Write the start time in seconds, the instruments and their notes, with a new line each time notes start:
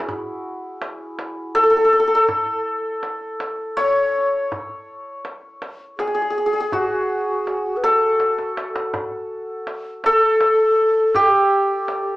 Already playing: santur E4 F#4 G#4
0.09 tombak dum
0.82 tombak tek
1.19 tombak tek
1.55 santur A4, ney A4, tombak tek
1.63 santur A4
1.70 santur A4
1.77 santur A4
1.85 santur A4
1.93 santur A4
1.99 santur A4
2.07 santur A4
2.15 santur A4
2.29 tombak dum
3.03 tombak tek
3.40 tombak tek
3.77 santur C#5, ney C#5, tombak tek
4.52 tombak dum
5.25 tombak tek
5.62 tombak tek
5.98 ney G#4, santur G#4, tombak tek
6.07 santur G#4
6.14 santur G#4
6.22 santur G#4
6.30 santur G#4
6.38 santur G#4
6.46 santur G#4
6.53 santur G#4
6.60 santur G#4
6.72 santur F#4, ney F#4, tombak dum
7.47 tombak tek
7.77 ney B4
7.84 santur A4, ney A4, tombak tek
8.20 tombak tek
8.38 tombak ka
8.57 tombak tek
8.75 tombak ka
8.94 tombak dum
9.67 tombak tek
10.04 santur A4, ney A4, tombak tek
10.41 tombak tek
11.15 ney G4, santur G4, tombak dum
11.21 ney A4
11.29 ney G4
11.88 tombak tek